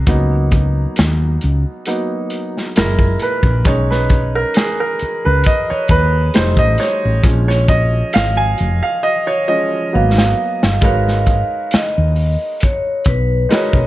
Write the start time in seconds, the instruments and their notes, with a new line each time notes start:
0.07 fretless electric bass C#2, upright piano F#3 A#3 B3 D#4, kick, closed hi-hat
0.51 kick, closed hi-hat
0.96 fretless electric bass D#2, snare, closed hi-hat
1.41 fretless electric bass C#2, closed hi-hat
1.86 upright piano F#3 A#3 B3 D#4, closed hi-hat
2.30 closed hi-hat
2.57 snare
2.76 fretless electric bass F#1, upright piano A#2 G#3 E4 A#4, snare, closed hi-hat
2.99 kick
3.19 upright piano B4, closed hi-hat
3.43 fretless electric bass A#1, kick
3.65 fretless electric bass B1, upright piano G#3 C#4 D#4 C#5, kick, closed hi-hat
3.91 upright piano B4, snare
4.10 kick, closed hi-hat
4.35 upright piano A#4
4.54 upright piano G#4, snare, closed hi-hat
4.80 upright piano A#4
4.99 muted fretless electric bass stroke, closed hi-hat
5.25 fretless electric bass C#2, upright piano B4
5.44 upright piano D#5, kick, closed hi-hat
5.70 upright piano C#5, muted fretless electric bass stroke
5.88 fretless electric bass D#2, upright piano B4, kick, closed hi-hat
6.34 fretless electric bass F1, upright piano G3 A3 D#4 C5, snare, closed hi-hat
6.57 fretless electric bass A1, upright piano D#5, kick
6.78 upright piano C#5, snare, closed hi-hat
7.05 fretless electric bass A1
7.23 fretless electric bass A#1, upright piano F3 G#3 C#4, kick, closed hi-hat
7.48 upright piano C#5, snare
7.68 upright piano D#5, kick, closed hi-hat
8.13 fretless electric bass G#1, upright piano F5, snare, closed hi-hat
8.37 upright piano G#5
8.58 fretless electric bass F1, closed hi-hat
8.83 upright piano F5
9.03 upright piano D#5
9.27 upright piano C#5
9.48 upright piano F3 G#3 C#4 D#5
9.93 fretless electric bass G#1, upright piano F#3 A#3 B3, vibraphone F5
10.18 snare
10.63 fretless electric bass G1, snare
10.81 fretless electric bass G#1, upright piano G#3 D#4 F#4 A#4 B4 C#5, vibraphone F5, kick, closed hi-hat
11.08 snare
11.26 kick, closed hi-hat
11.71 vibraphone D#5, muted fretless electric bass stroke, snare, closed hi-hat
11.98 fretless electric bass D#2
12.16 open hi-hat
12.60 vibraphone C#5, kick, closed hi-hat
13.05 fretless electric bass B1, vibraphone B4, kick, closed hi-hat
13.49 upright piano G#3 D#4 F#4 A#4 B4 D#5, vibraphone C#5, snare, closed hi-hat
13.73 fretless electric bass B1, kick